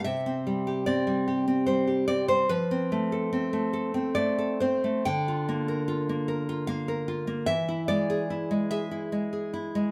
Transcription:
\new Staff \with { instrumentName = "Nylon-string guitar" } { \time 3/4 \key f \lydian \tempo 4 = 73 << { e''4 d''4 c''8 d''16 c''16 | b'2 d''8 c''8 | g''2 f''4 | e''8 d''4 e''8 r4 | } \\ { c16 c'16 g16 g'16 c'16 g16 g'16 c'16 g16 g'16 c'16 g16 | f16 c'16 a16 a'16 c'16 a16 a'16 c'16 a16 a'16 c'16 a16 | d16 f'16 bes16 bes'16 f'16 bes16 bes'16 f'16 bes16 bes'16 f'16 bes16 | e16 e'16 gis16 gis'16 e'16 gis16 gis'16 e'16 gis16 gis'16 e'16 gis16 | } >> }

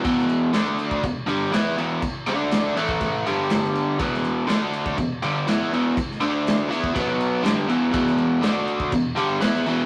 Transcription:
<<
  \new Staff \with { instrumentName = "Overdriven electric guitar" } { \clef bass \time 4/4 \key e \minor \tempo 4 = 122 <e, b, e>4 <d a d'>4 <e, b,>8 <g, d g>8 <e b e'>8 <e, b, e>8 | r8 <d a d'>4 <a, e a>4 <g, d g>4. | <e, b, e>4 <d a d'>4 <e, b,>8 <g, d g>8 <e b e'>8 <e, b, e>8 | r8 <d a d'>4 <e b e'>8 <b, fis b>4 <g, d g>8 <e, b, e>8 |
<e, b, e>4 <d a d'>4 <e, b,>8 <g, d g>8 <e b e'>8 <e, b, e>8 | }
  \new DrumStaff \with { instrumentName = "Drums" } \drummode { \time 4/4 <cymc bd>16 sn16 cymc8 <cymc sn>8 cymc16 bd16 <cymc bd>8 cymc8 <cymc sn>8 cymc8 | <cymc bd>8 cymc8 <cymc sn>8 cymc16 bd16 <cymc bd>8 cymc8 <cymc sn>16 sn16 cymc8 | <cymc bd>16 sn16 cymc8 <cymc sn>8 cymc16 bd16 <cymc bd>8 cymc8 <cymc sn>8 cymc8 | <cymc bd>16 sn16 cymc8 <cymc sn>8 cymc16 bd16 <cymc bd>8 cymc8 <cymc sn>8 cymc8 |
<cymc bd>16 sn16 cymc8 <cymc sn>8 cymc16 bd16 <cymc bd>8 cymc8 <cymc sn>16 sn16 cymc8 | }
>>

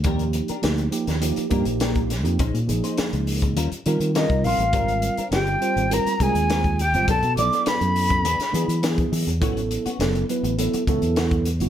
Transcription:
<<
  \new Staff \with { instrumentName = "Flute" } { \time 4/4 \key ees \lydian \tempo 4 = 102 r1 | r2. ees''8 f''8~ | f''4 g''4 bes''8 aes''4 g''8 | a''8 d'''8 b''2 r4 |
r1 | }
  \new Staff \with { instrumentName = "Hollow-body jazz guitar" } { \time 4/4 \key ees \lydian r1 | r2. ees'8 f'8~ | f'4 g'4 bes'8 aes'4 g'8 | a'8 d''8 b'2 r4 |
r1 | }
  \new Staff \with { instrumentName = "Clean electric guitar" } { \time 4/4 \key ees \lydian <bes d' g' bes'>16 r8 <d' g' bes'>16 r4. <bes d' g' bes'>16 r16 <bes d' g' bes'>16 r8. | <des' ees' aes' c''>16 r8 <ees' aes' c''>16 r4 <g des' f' bes'>16 r16 <g des' f' bes'>16 r16 <g des' f' bes'>16 r8. | <g c' d' bes'>16 r8 <c' d' bes'>16 r4. <g c' d' bes'>16 r16 <g c' d' bes'>16 r8. | <fis b d' a'>16 r8 <b d' a'>16 r4 <b d' gis'>16 r16 <b d' gis'>16 r16 <b d' gis'>16 r8. |
<e b cis' fis'>16 r8 <b cis' fis'>16 r4. <e b cis' fis'>16 r16 <e b cis' fis'>16 r8. | }
  \new Staff \with { instrumentName = "Tine electric piano" } { \time 4/4 \key ees \lydian <f bes ees' g'>8. r16 <f bes ees' g'>8 <f bes ees' g'>8 <f bes ees' g'>8 <f bes ees' g'>4 r16 <f bes ees' g'>16 | r8 <f bes ees' aes'>4. r8 <g c' f' bes'>8 <g c' f' bes'>8. r16 | <g c' f' bes'>8. r16 <g c' f' g'>8 <g c' f' c''>8 <g c' f' bes'>8 <aes c' f' aes'>4 r16 <g c' f' c''>16 | r8 <fis b e' a'>4. r8 <ges b e' gis'>8 <ges b e' gis'>8. r16 |
<fis b e' a'>8. r16 <fis b e' a'>8 <fis b e' b'>8 <fis b e' a'>8 <fis b e' a'>4 r16 <fis b e' fis'>16 | }
  \new Staff \with { instrumentName = "Fingered electric bass" } { \clef bass \time 4/4 \key ees \lydian ees,8. r16 d,8 r16 ees,8 r16 g,16 bes,,4 f,16 | bes,,16 bes,16 bes,,16 r8 des,8. ees,16 r16 ees16 ees8 c,16 bes,,16 a,,16 | aes,,8. r16 g,,8 r16 aes,,8 r16 c,16 ees,4 aes,,16 | b,,16 b,16 b,,16 r8 fis,8. e,16 r16 e16 e8. e16 e,16 |
a,,8. r16 fis,,8 r16 a,,8 r16 cis,16 e,4 aes,,16 | }
  \new DrumStaff \with { instrumentName = "Drums" } \drummode { \time 4/4 <hh bd>16 hh16 hh16 hh16 <hh sn>16 hh16 hh16 <hh sn>16 hh16 hh16 <hh bd>16 hh16 <hh sn>16 <hh bd>16 <hh sn>16 hh16 | <hh bd>16 hh16 hh16 hh16 <hh sn>16 hh16 hho16 <hh bd>16 hh16 hh16 hh16 hh16 <hh sn>16 <hh bd>16 hho16 hh16 | <hh bd>16 hh16 hh16 hh16 <hh sn>16 hh16 hh16 hh16 hh16 hh16 <hh bd>16 hh16 <hh sn>16 <hh bd>16 hh16 hh16 | <hh bd>16 hh16 hh16 hh16 <hh sn>16 hh16 hho16 <hh bd>16 hh16 <hh sn>16 hh16 hh16 <hh sn>16 <hh bd>16 hho16 hh16 |
<hh bd>16 hh16 hh16 hh16 <hh sn>16 hh16 hh16 hh16 hh16 hh16 <hh bd>16 hh16 <hh sn>16 <hh bd>16 hh16 hh16 | }
>>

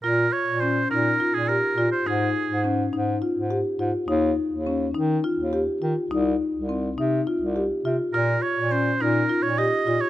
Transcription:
<<
  \new Staff \with { instrumentName = "Oboe" } { \time 7/8 \key bes \dorian \tempo 4 = 104 bes'8 des''8 c''8 bes'8. aes'16 bes'8. c''16 | aes'4 r2 r8 | r2. r8 | r2. r8 |
bes'8 des''8 c''8 bes'8. des''16 ees''8. des''16 | }
  \new Staff \with { instrumentName = "Marimba" } { \time 7/8 \key bes \dorian f'4 des'8 ees'8 f'8 g'8 f'8 | ees'4 des'8 ees'8 f'8 g'8 f'8 | ees'4 des'8 ees'8 f'8 g'8 f'8 | ees'4 c'8 ees'8 f'8 g'8 f'8 |
f'4 des'8 ees'8 f'8 g'8 f'8 | }
  \new Staff \with { instrumentName = "Bass clarinet" } { \clef bass \time 7/8 \key bes \dorian bes,8 r16 bes,8. bes,8 r16 bes,8 r16 bes,16 r16 | aes,8 r16 aes,8. aes,8 r16 aes,8 r16 aes,16 r16 | ees,8 r16 ees,8. ees8 r16 ees,8 r16 ees16 r16 | c,8 r16 c,8. c8 r16 c,8 r16 c16 r16 |
bes,8 r16 bes,8. bes,8 r16 bes,8 r16 bes,16 r16 | }
>>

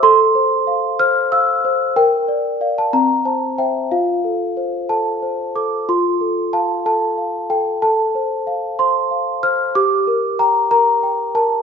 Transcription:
\new Staff \with { instrumentName = "Celesta" } { \time 6/8 \key f \major \tempo 4. = 62 << { c'''4. f'''8 e'''4 | g''4~ g''16 a''16 bes''8 a''8 g''8 | f''4. a''4 d'''8 | c'''4 a''8 a''4 g''8 |
a''4. c'''4 f'''8 | d'''4 bes''8 bes''4 a''8 | } \\ { a'8 c''8 f''8 c''8 f''8 c''8 | bes'8 d''8 <d'' f''>8 c'8 c''8 <c'' e''>8 | f'8 a'8 c''8 a'8 c''8 a'8 | f'8 a'8 f''8 a'8 f''8 a'8 |
a'8 c''8 f''8 c''8 f''8 c''8 | g'8 bes'8 g''8 bes'8 g''8 bes'8 | } >> }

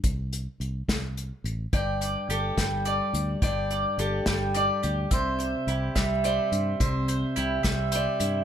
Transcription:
<<
  \new Staff \with { instrumentName = "Mandolin" } { \time 6/8 \key c \lydian \tempo 4. = 71 r2. | g''8 d''8 g'8 g''8 d''4 | g''8 d''8 g'8 g''8 d''8 g'8 | e''8 c''8 e'8 e''8 c''4 |
e''8 c''8 e'8 e''8 c''8 e'8 | }
  \new Staff \with { instrumentName = "Steel-string acoustic guitar" } { \time 6/8 \key c \lydian << { r2. | d''4 a'4 d''4 | d''4 a'4 d''4 | c''4 g'4 d''4 |
c''4 g'4 d''4 | } \\ { r2. | g,4. g4. | g,4. g4. | c4. g4. |
c4. g4. | } >> }
  \new Staff \with { instrumentName = "Fingered electric bass" } { \clef bass \time 6/8 \key c \lydian c,4 c,8 c,4 a,,8 | g,,4 g,,8 g,,4 d,8 | g,,4 g,,8 g,,4 d,8 | c,4 c,8 c,4 g,8 |
c,4 c,8 c,4 g,8 | }
  \new DrumStaff \with { instrumentName = "Drums" } \drummode { \time 6/8 <hh bd>8 hh8 hh8 <hh bd sn>8 hh8 hh8 | <hh bd>8 hh8 hh8 <hh bd sn>8 hh8 hh8 | <hh bd>8 hh8 hh8 <hh bd sn>8 hh8 hh8 | <hh bd>8 hh8 hh8 <hh bd sn>8 hh8 hh8 |
<hh bd>8 hh8 hh8 <hh bd sn>8 hh8 hh8 | }
>>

